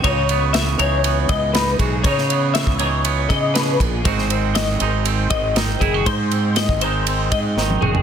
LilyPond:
<<
  \new Staff \with { instrumentName = "Clean electric guitar" } { \time 4/4 \key cis \dorian \tempo 4 = 119 cis''4 e''8 cis''4 dis''8 b'8 gis'8 | cis''4 e''8 cis''4 dis''8 b'8 gis'8 | bis'4 dis''8 bis'4 dis''8 bis'8 gis'8 | bis'4 dis''8 bis'4 dis''8 bis'8 gis'8 | }
  \new Staff \with { instrumentName = "Clean electric guitar" } { \time 4/4 \key cis \dorian << { dis'8 b4 dis'8 b4 dis'8 fis'8 | dis'8 b4 dis'8 b2 | <gis bis dis' fis'>8 bis4 dis'8 bis4 dis'8 e'16 fis'16 | dis'8 bis4 dis'8 bis4 dis'8 fis'8 | } \\ { cis4. e4. gis,4 | cis4. e4. b,8 ais,8 | gis,4. gis4. dis4 | gis,4. gis4. dis4 | } >> }
  \new Staff \with { instrumentName = "Fingered electric bass" } { \clef bass \time 4/4 \key cis \dorian cis,4. cis,4 cis,4 b,,8 | cis4~ cis16 cis,4~ cis,16 cis4 ais,,8 | gis,,4. gis,,4 gis,,4 fis,,8 | gis,4~ gis,16 gis,,4~ gis,,16 gis,8 gis,,8 fis,,8 | }
  \new DrumStaff \with { instrumentName = "Drums" } \drummode { \time 4/4 <bd cymr>8 cymr8 <cymr sn>8 cymr8 cymr8 <bd cymr>8 <cymr sn>8 <bd cymr>8 | <bd cymr>16 sn16 cymr8 <cymr sn>16 bd16 cymr8 cymr8 <bd cymr>8 <cymr sn>8 <bd cymr>8 | <bd cymr>16 sn16 cymr8 <cymr sn>8 cymr8 cymr8 <bd cymr>8 <cymr sn>8 <bd cymr>8 | <bd cymr>8 cymr8 <cymr sn>16 bd16 cymr8 cymr8 <bd cymr>8 sn16 tommh16 toml16 tomfh16 | }
>>